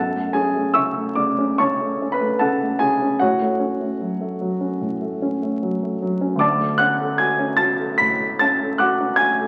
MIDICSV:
0, 0, Header, 1, 2, 480
1, 0, Start_track
1, 0, Key_signature, 3, "minor"
1, 0, Tempo, 817439
1, 1887, Time_signature, 4, 2, 24, 8
1, 1888, Tempo, 797872
1, 5654, End_track
2, 0, Start_track
2, 0, Title_t, "Grand piano"
2, 0, Program_c, 0, 0
2, 0, Note_on_c, 0, 42, 47
2, 0, Note_on_c, 0, 69, 58
2, 0, Note_on_c, 0, 78, 60
2, 0, Note_on_c, 0, 81, 79
2, 84, Note_on_c, 0, 57, 39
2, 85, Control_c, 0, 64, 127
2, 187, Note_off_c, 0, 78, 0
2, 188, Note_off_c, 0, 69, 0
2, 195, Note_on_c, 0, 80, 83
2, 200, Note_off_c, 0, 81, 0
2, 203, Note_on_c, 0, 68, 62
2, 207, Note_on_c, 0, 61, 44
2, 281, Note_off_c, 0, 57, 0
2, 332, Note_on_c, 0, 57, 39
2, 403, Note_off_c, 0, 61, 0
2, 432, Note_off_c, 0, 68, 0
2, 432, Note_on_c, 0, 88, 82
2, 437, Note_on_c, 0, 85, 64
2, 438, Note_on_c, 0, 76, 62
2, 445, Note_off_c, 0, 80, 0
2, 446, Note_on_c, 0, 49, 44
2, 526, Note_off_c, 0, 57, 0
2, 568, Note_on_c, 0, 57, 44
2, 643, Note_off_c, 0, 49, 0
2, 670, Note_off_c, 0, 76, 0
2, 670, Note_off_c, 0, 85, 0
2, 678, Note_on_c, 0, 86, 73
2, 682, Note_on_c, 0, 74, 53
2, 685, Note_off_c, 0, 88, 0
2, 687, Note_on_c, 0, 49, 45
2, 764, Note_off_c, 0, 57, 0
2, 813, Note_on_c, 0, 61, 46
2, 884, Note_off_c, 0, 49, 0
2, 911, Note_off_c, 0, 42, 0
2, 912, Note_off_c, 0, 74, 0
2, 927, Note_off_c, 0, 86, 0
2, 930, Note_on_c, 0, 85, 83
2, 933, Note_on_c, 0, 73, 60
2, 935, Note_on_c, 0, 81, 59
2, 941, Note_on_c, 0, 49, 42
2, 1007, Note_off_c, 0, 61, 0
2, 1062, Note_on_c, 0, 57, 43
2, 1130, Note_off_c, 0, 49, 0
2, 1187, Note_on_c, 0, 61, 42
2, 1231, Note_off_c, 0, 73, 0
2, 1232, Note_off_c, 0, 81, 0
2, 1245, Note_on_c, 0, 83, 81
2, 1250, Note_off_c, 0, 57, 0
2, 1252, Note_off_c, 0, 85, 0
2, 1255, Note_on_c, 0, 71, 58
2, 1294, Note_on_c, 0, 57, 44
2, 1372, Note_off_c, 0, 61, 0
2, 1402, Note_off_c, 0, 71, 0
2, 1405, Note_on_c, 0, 81, 80
2, 1409, Note_off_c, 0, 83, 0
2, 1411, Note_on_c, 0, 69, 58
2, 1413, Note_on_c, 0, 78, 62
2, 1416, Note_on_c, 0, 49, 43
2, 1485, Note_off_c, 0, 57, 0
2, 1537, Note_on_c, 0, 57, 42
2, 1605, Note_off_c, 0, 49, 0
2, 1633, Note_off_c, 0, 69, 0
2, 1634, Note_off_c, 0, 78, 0
2, 1638, Note_on_c, 0, 80, 85
2, 1647, Note_off_c, 0, 81, 0
2, 1647, Note_on_c, 0, 68, 61
2, 1650, Note_on_c, 0, 49, 45
2, 1724, Note_off_c, 0, 57, 0
2, 1773, Note_on_c, 0, 61, 43
2, 1839, Note_off_c, 0, 49, 0
2, 1868, Note_off_c, 0, 68, 0
2, 1876, Note_on_c, 0, 78, 80
2, 1880, Note_off_c, 0, 80, 0
2, 1883, Note_on_c, 0, 66, 61
2, 1884, Note_on_c, 0, 73, 61
2, 1888, Note_off_c, 0, 61, 0
2, 1889, Note_on_c, 0, 45, 54
2, 1895, Control_c, 0, 64, 0
2, 1977, Control_c, 0, 64, 127
2, 2010, Note_on_c, 0, 57, 45
2, 2117, Note_on_c, 0, 61, 42
2, 2200, Note_off_c, 0, 57, 0
2, 2242, Note_on_c, 0, 57, 46
2, 2313, Note_off_c, 0, 61, 0
2, 2364, Note_on_c, 0, 54, 37
2, 2436, Note_off_c, 0, 57, 0
2, 2486, Note_on_c, 0, 57, 45
2, 2558, Note_off_c, 0, 54, 0
2, 2609, Note_on_c, 0, 54, 41
2, 2680, Note_off_c, 0, 57, 0
2, 2725, Note_on_c, 0, 61, 38
2, 2801, Note_off_c, 0, 54, 0
2, 2826, Note_off_c, 0, 45, 0
2, 2848, Note_on_c, 0, 45, 42
2, 2921, Note_off_c, 0, 61, 0
2, 2971, Note_on_c, 0, 57, 43
2, 3095, Note_on_c, 0, 61, 47
2, 3165, Note_off_c, 0, 57, 0
2, 3215, Note_on_c, 0, 57, 46
2, 3287, Note_off_c, 0, 61, 0
2, 3339, Note_on_c, 0, 54, 45
2, 3407, Note_off_c, 0, 57, 0
2, 3461, Note_on_c, 0, 57, 43
2, 3529, Note_off_c, 0, 54, 0
2, 3577, Note_on_c, 0, 54, 50
2, 3649, Note_off_c, 0, 57, 0
2, 3691, Note_on_c, 0, 61, 44
2, 3767, Note_off_c, 0, 54, 0
2, 3778, Note_on_c, 0, 38, 58
2, 3788, Note_off_c, 0, 66, 0
2, 3788, Note_off_c, 0, 73, 0
2, 3789, Note_off_c, 0, 45, 0
2, 3798, Note_on_c, 0, 86, 85
2, 3805, Note_on_c, 0, 74, 66
2, 3807, Note_on_c, 0, 81, 69
2, 3808, Note_off_c, 0, 78, 0
2, 3812, Note_off_c, 0, 61, 0
2, 3825, Control_c, 0, 64, 0
2, 3915, Control_c, 0, 64, 127
2, 3926, Note_on_c, 0, 57, 44
2, 4031, Note_on_c, 0, 90, 96
2, 4032, Note_off_c, 0, 74, 0
2, 4032, Note_off_c, 0, 81, 0
2, 4038, Note_on_c, 0, 78, 67
2, 4045, Note_off_c, 0, 86, 0
2, 4045, Note_on_c, 0, 61, 47
2, 4121, Note_off_c, 0, 57, 0
2, 4174, Note_on_c, 0, 69, 50
2, 4239, Note_off_c, 0, 61, 0
2, 4266, Note_off_c, 0, 78, 0
2, 4274, Note_on_c, 0, 92, 81
2, 4280, Note_off_c, 0, 90, 0
2, 4283, Note_on_c, 0, 80, 61
2, 4284, Note_on_c, 0, 66, 45
2, 4363, Note_off_c, 0, 69, 0
2, 4400, Note_on_c, 0, 61, 48
2, 4477, Note_off_c, 0, 66, 0
2, 4505, Note_on_c, 0, 93, 90
2, 4507, Note_off_c, 0, 80, 0
2, 4509, Note_on_c, 0, 81, 67
2, 4517, Note_on_c, 0, 66, 44
2, 4519, Note_off_c, 0, 92, 0
2, 4594, Note_off_c, 0, 61, 0
2, 4642, Note_on_c, 0, 69, 46
2, 4712, Note_off_c, 0, 66, 0
2, 4722, Note_off_c, 0, 38, 0
2, 4738, Note_off_c, 0, 81, 0
2, 4753, Note_off_c, 0, 93, 0
2, 4753, Note_on_c, 0, 95, 89
2, 4760, Note_on_c, 0, 83, 70
2, 4766, Note_on_c, 0, 45, 40
2, 4834, Note_off_c, 0, 69, 0
2, 4895, Note_on_c, 0, 57, 44
2, 4956, Note_off_c, 0, 45, 0
2, 4984, Note_off_c, 0, 83, 0
2, 4997, Note_off_c, 0, 95, 0
2, 5004, Note_on_c, 0, 93, 87
2, 5012, Note_on_c, 0, 81, 73
2, 5014, Note_on_c, 0, 61, 41
2, 5080, Note_off_c, 0, 57, 0
2, 5141, Note_on_c, 0, 69, 49
2, 5199, Note_off_c, 0, 61, 0
2, 5230, Note_off_c, 0, 81, 0
2, 5238, Note_on_c, 0, 90, 77
2, 5242, Note_off_c, 0, 93, 0
2, 5244, Note_on_c, 0, 86, 67
2, 5247, Note_on_c, 0, 78, 67
2, 5252, Note_on_c, 0, 66, 48
2, 5323, Note_off_c, 0, 69, 0
2, 5371, Note_on_c, 0, 61, 43
2, 5439, Note_off_c, 0, 66, 0
2, 5465, Note_on_c, 0, 92, 93
2, 5467, Note_off_c, 0, 86, 0
2, 5468, Note_off_c, 0, 78, 0
2, 5475, Note_on_c, 0, 80, 75
2, 5479, Note_on_c, 0, 66, 50
2, 5480, Note_off_c, 0, 90, 0
2, 5560, Note_off_c, 0, 61, 0
2, 5607, Note_on_c, 0, 69, 45
2, 5654, Note_off_c, 0, 66, 0
2, 5654, Note_off_c, 0, 69, 0
2, 5654, Note_off_c, 0, 80, 0
2, 5654, Note_off_c, 0, 92, 0
2, 5654, End_track
0, 0, End_of_file